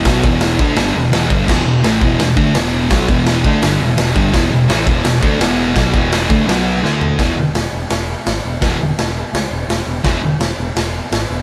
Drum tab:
CC |--------|x-------|--------|--------|
HH |o-o-o-o-|--o-o-o-|o-o-o-o-|o-o-o-o-|
SD |o-o-o-o-|o-o-o-o-|o-o-o-o-|o-o-o-o-|
FT |--------|--------|--------|--------|
BD |oo-o---o|o--o-o--|oo-o---o|o--o-o--|

CC |--------|--------|--------|--------|
HH |o-o-o---|o-o-o-o-|o-o-o-o-|o-o-o-o-|
SD |o-o-o-o-|o-o-o-o-|o-o-o-o-|o-o-o-o-|
FT |-------o|--------|--------|--------|
BD |oo-o----|o-------|o-------|o-------|